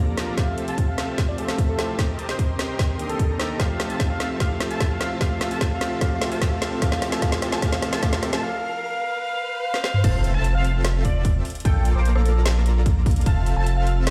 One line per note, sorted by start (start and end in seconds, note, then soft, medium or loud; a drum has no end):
0.00 0.36 A#1 loud
0.00 0.36 F3 medium
0.00 0.35 A#3 medium
0.00 0.40 A#3 medium
0.00 0.38 C4 medium
0.00 0.40 D4 medium
0.00 0.35 F4 medium
0.00 0.36 G4 loud
0.00 0.35 A4 medium
0.00 0.39 A4 loud
0.00 0.35 D5 medium
0.00 0.35 A#5 medium
0.00 riser medium
0.17 snare medium
0.17 closed hi-hat medium
0.36 0.66 F1 loud
0.36 1.35 F3 medium
0.36 1.35 A3 medium
0.36 0.65 C4 medium
0.36 1.36 C4 medium
0.36 0.65 F4 medium
0.36 1.37 G4 medium
0.36 0.65 A4 medium
0.36 0.65 E5 medium
0.36 1.36 E5 medium
0.36 0.54 F5 medium
0.36 0.65 A5 loud
0.36 kick loud
0.36 snare medium
0.36 closed hi-hat medium
0.58 closed hi-hat medium
0.68 2.00 F1 loud
0.68 1.96 C4 medium
0.68 1.96 F4 medium
0.68 1.96 A4 medium
0.68 1.96 E5 medium
0.68 1.96 A5 medium
0.68 0.84 A5 medium
0.68 closed hi-hat medium
0.78 kick medium
0.78 closed hi-hat medium
0.88 1.04 F5 medium
0.98 snare medium
0.98 closed hi-hat medium
1.18 kick loud
1.18 snare medium
1.18 closed hi-hat medium
1.28 1.36 D5 loud
1.37 1.76 F3 medium
1.37 1.76 A3 medium
1.37 1.76 C4 medium
1.37 1.77 G4 medium
1.37 1.55 A4 loud
1.37 1.76 E5 medium
1.37 closed hi-hat medium
1.48 snare medium
1.48 closed hi-hat medium
1.58 kick loud
1.58 closed hi-hat medium
1.69 1.85 A4 medium
1.77 1.96 F3 medium
1.77 1.96 A3 medium
1.77 1.96 C4 medium
1.77 1.96 E4 medium
1.77 1.97 G4 medium
1.77 snare medium
1.77 closed hi-hat medium
1.98 2.27 D#1 medium
1.98 2.03 D#3 medium
1.98 2.04 A#3 medium
1.98 2.04 C4 medium
1.98 2.27 C4 loud
1.98 2.04 D4 medium
1.98 2.26 G4 medium
1.98 2.04 G4 loud
1.98 2.26 A#4 medium
1.98 2.26 D#5 medium
1.98 2.26 A5 loud
1.98 kick loud
1.98 snare medium
1.98 closed hi-hat medium
2.19 closed hi-hat medium
2.29 3.28 D#1 loud
2.29 3.28 C4 medium
2.29 3.28 G4 medium
2.29 3.28 A#4 medium
2.29 2.35 C5 medium
2.29 3.28 D#5 medium
2.29 3.28 C6 medium
2.29 snare medium
2.29 closed hi-hat medium
2.39 2.45 C5 medium
2.39 kick medium
2.39 closed hi-hat medium
2.59 snare medium
2.59 closed hi-hat medium
2.79 kick loud
2.79 snare medium
2.79 closed hi-hat medium
2.98 3.37 D#3 medium
2.98 3.37 A#3 medium
2.98 3.37 C4 medium
2.98 3.37 D4 medium
2.98 3.38 G4 medium
2.98 closed hi-hat medium
3.09 3.17 A4 medium
3.09 closed hi-hat medium
3.19 3.26 A4 medium
3.19 kick loud
3.19 closed hi-hat medium
3.29 3.58 D#2 loud
3.29 3.57 C4 medium
3.29 3.57 G4 medium
3.29 3.36 A4 medium
3.29 3.57 A#4 medium
3.29 3.57 D#5 medium
3.29 3.57 A#5 medium
3.38 3.57 D#3 medium
3.38 3.57 A#3 medium
3.38 3.57 C4 medium
3.38 3.58 D4 medium
3.38 3.58 G4 loud
3.38 3.59 A4 medium
3.38 snare medium
3.38 closed hi-hat medium
3.58 4.37 F3 medium
3.58 4.38 A3 medium
3.58 4.39 C4 medium
3.58 3.88 C4 medium
3.58 3.88 F4 medium
3.58 3.88 A4 medium
3.58 3.88 E5 medium
3.58 4.39 E5 medium
3.58 3.76 F5 medium
3.58 3.88 A5 medium
3.58 kick medium
3.58 snare medium
3.58 closed hi-hat medium
3.62 4.40 G4 medium
3.80 snare medium
3.80 closed hi-hat medium
3.90 4.39 C4 medium
3.90 4.39 F4 medium
3.90 4.39 A4 medium
3.90 4.39 E5 medium
3.90 4.06 A5 medium
3.90 4.39 A5 medium
3.90 closed hi-hat medium
4.00 kick medium
4.00 snare medium
4.00 closed hi-hat medium
4.10 4.27 F5 medium
4.20 snare medium
4.20 closed hi-hat medium
4.38 4.68 F1 medium
4.38 5.17 F3 medium
4.38 5.18 A3 medium
4.38 5.19 C4 medium
4.38 4.68 C4 medium
4.38 4.68 F4 medium
4.38 4.68 A4 medium
4.38 4.68 E5 medium
4.38 5.20 E5 medium
4.38 4.57 F5 medium
4.38 4.68 A5 medium
4.38 kick loud
4.38 snare medium
4.38 closed hi-hat medium
4.42 5.20 G4 medium
4.60 snare medium
4.60 closed hi-hat medium
4.71 5.19 C4 medium
4.71 5.19 F4 medium
4.71 5.19 A4 medium
4.71 5.19 E5 medium
4.71 4.87 A5 medium
4.71 5.19 A5 medium
4.71 closed hi-hat medium
4.80 kick loud
4.80 snare medium
4.80 closed hi-hat medium
4.90 5.07 F5 medium
5.01 snare medium
5.01 closed hi-hat medium
5.19 5.49 A#1 medium
5.19 5.98 F3 medium
5.19 5.99 A3 medium
5.19 6.00 C4 medium
5.19 5.49 C4 medium
5.19 5.49 F4 medium
5.19 6.01 G4 medium
5.19 5.49 A4 medium
5.19 5.49 E5 medium
5.19 6.00 E5 medium
5.19 5.37 F5 medium
5.19 5.49 A5 medium
5.19 kick loud
5.19 snare medium
5.19 closed hi-hat medium
5.41 snare medium
5.41 closed hi-hat medium
5.51 5.99 A#1 loud
5.51 6.00 C4 medium
5.51 6.00 F4 medium
5.51 6.00 A4 medium
5.51 6.00 E5 medium
5.51 6.00 A5 medium
5.51 5.67 A5 medium
5.51 closed hi-hat medium
5.61 kick medium
5.61 snare medium
5.61 closed hi-hat medium
5.71 5.88 F5 medium
5.81 snare medium
5.81 closed hi-hat medium
5.99 6.79 F3 medium
5.99 6.80 A3 medium
5.99 6.80 C4 medium
5.99 6.29 C4 medium
5.99 6.29 F4 medium
5.99 6.81 G4 medium
5.99 6.29 A4 medium
5.99 6.29 E5 medium
5.99 6.81 E5 medium
5.99 6.18 F5 medium
5.99 6.29 A5 loud
5.99 kick loud
5.99 snare medium
5.99 closed hi-hat medium
6.22 snare medium
6.22 closed hi-hat medium
6.31 6.80 A#1 loud
6.31 6.80 C4 medium
6.31 6.80 F4 medium
6.31 6.80 A4 medium
6.31 6.80 E5 medium
6.31 6.48 A5 medium
6.31 6.80 A5 medium
6.31 closed hi-hat medium
6.42 kick loud
6.42 snare medium
6.42 closed hi-hat medium
6.52 6.68 F5 medium
6.62 snare medium
6.62 closed hi-hat medium
6.80 7.19 F3 medium
6.80 7.20 A3 medium
6.80 7.21 C4 medium
6.80 7.10 C4 medium
6.80 7.21 E4 medium
6.80 7.10 F4 medium
6.80 7.10 A4 medium
6.80 7.10 E5 medium
6.80 6.98 F5 medium
6.80 7.10 A5 loud
6.80 kick loud
6.80 snare medium
6.80 closed hi-hat medium
6.84 7.22 G4 medium
6.92 snare medium
7.02 snare loud
7.02 closed hi-hat medium
7.12 7.21 C4 medium
7.12 7.21 F4 medium
7.12 7.21 A4 medium
7.12 7.21 E5 medium
7.12 7.20 A5 medium
7.12 7.21 A5 medium
7.12 snare medium
7.12 closed hi-hat medium
7.20 7.59 F3 medium
7.20 7.60 A3 medium
7.20 7.50 C4 medium
7.20 7.61 C4 medium
7.20 7.61 E4 medium
7.20 7.50 F4 medium
7.20 7.62 G4 medium
7.20 7.50 A4 medium
7.20 7.50 E5 medium
7.20 7.38 F5 medium
7.20 7.50 A5 loud
7.20 kick loud
7.20 snare loud
7.20 closed hi-hat medium
7.32 snare medium
7.42 snare medium
7.42 closed hi-hat medium
7.52 7.61 C4 medium
7.52 7.61 F4 medium
7.52 7.61 A4 medium
7.52 7.61 E5 medium
7.52 7.61 A5 loud
7.52 7.61 A5 medium
7.52 snare medium
7.60 7.99 F3 medium
7.60 8.00 A3 medium
7.60 8.01 C4 medium
7.60 7.90 C4 medium
7.60 8.02 E4 medium
7.60 7.90 F4 medium
7.60 7.90 A4 medium
7.60 7.90 E5 medium
7.60 7.79 F5 medium
7.60 7.90 A5 loud
7.60 kick loud
7.60 snare medium
7.60 closed hi-hat medium
7.64 8.02 G4 medium
7.73 snare medium
7.82 snare loud
7.82 closed hi-hat medium
7.93 8.01 C4 medium
7.93 8.01 F4 medium
7.93 8.01 A4 medium
7.93 8.01 E5 medium
7.93 8.01 A5 medium
7.93 snare medium
7.93 closed hi-hat medium
8.01 8.31 F2 loud
8.01 8.40 F3 medium
8.01 8.41 A3 medium
8.01 8.41 C4 medium
8.01 8.31 C4 medium
8.01 8.42 E4 medium
8.01 8.31 F4 medium
8.01 8.42 G4 medium
8.01 8.31 A4 medium
8.01 8.31 E5 medium
8.01 8.19 F5 loud
8.01 8.31 A5 medium
8.01 kick loud
8.01 snare loud
8.01 closed hi-hat medium
8.13 snare medium
8.23 snare medium
8.23 closed hi-hat medium
8.33 8.41 F2 loud
8.33 8.41 C4 medium
8.33 8.41 F4 medium
8.33 8.41 A4 medium
8.33 8.41 E5 medium
8.33 8.41 A5 medium
8.33 snare medium
8.43 8.60 F5 medium
8.63 8.80 F5 medium
8.83 9.00 F5 loud
9.04 9.20 F5 medium
9.24 9.40 F5 loud
9.44 9.60 F5 medium
9.64 9.80 F5 loud
9.74 snare medium
9.84 10.00 F5 medium
9.84 snare medium
9.94 mid tom medium
10.04 10.32 F1 loud
10.04 10.32 C4 medium
10.04 10.32 F4 medium
10.04 10.32 A4 medium
10.04 10.32 E5 medium
10.04 10.20 F5 medium
10.04 10.32 A5 loud
10.04 kick loud
10.04 closed hi-hat medium
10.04 crash loud
10.04 impact medium
10.24 closed hi-hat medium
10.34 11.42 F1 loud
10.34 11.44 C4 medium
10.34 11.44 F4 medium
10.34 11.44 A4 medium
10.34 11.44 E5 medium
10.34 11.44 A5 medium
10.34 10.51 A5 medium
10.44 closed hi-hat medium
10.55 10.71 F5 medium
10.64 closed hi-hat medium
10.85 snare loud
10.85 closed hi-hat medium
11.05 11.21 D5 loud
11.05 kick medium
11.05 closed hi-hat medium
11.25 kick loud
11.25 closed hi-hat medium
11.45 open hi-hat medium
11.50 closed hi-hat medium
11.55 closed hi-hat medium
11.60 closed hi-hat medium
11.65 11.93 A#1 loud
11.65 11.93 A#3 loud
11.65 11.93 F4 medium
11.65 11.93 A4 medium
11.65 11.82 A4 medium
11.65 11.93 D5 medium
11.65 11.93 G5 loud
11.65 kick loud
11.65 closed hi-hat medium
11.85 closed hi-hat medium
11.95 13.24 A#1 medium
11.95 13.24 A#3 medium
11.95 13.24 F4 medium
11.95 13.24 A4 medium
11.95 12.13 C5 medium
11.95 13.24 D5 medium
11.95 13.24 A#5 medium
11.95 13.24 D6 medium
12.05 closed hi-hat medium
12.15 12.56 A4 medium
12.15 cross-stick medium
12.26 closed hi-hat medium
12.46 snare loud
12.46 closed hi-hat medium
12.66 closed hi-hat medium
12.86 kick loud
12.86 closed hi-hat medium
13.06 kick loud
13.06 open hi-hat medium
13.11 closed hi-hat medium
13.16 closed hi-hat medium
13.21 closed hi-hat medium
13.26 13.54 F1 medium
13.26 13.54 C4 medium
13.26 13.54 F4 medium
13.26 13.54 A4 medium
13.26 13.54 E5 medium
13.26 13.43 F5 medium
13.26 13.54 A5 loud
13.26 kick loud
13.26 closed hi-hat medium
13.46 closed hi-hat medium
13.56 14.10 F1 loud
13.56 14.10 C4 medium
13.56 14.10 F4 medium
13.56 14.10 A4 medium
13.56 14.10 E5 medium
13.56 13.73 A5 medium
13.56 14.10 A5 medium
13.67 closed hi-hat medium
13.77 13.93 F5 loud
13.87 closed hi-hat medium
14.07 snare loud
14.07 closed hi-hat medium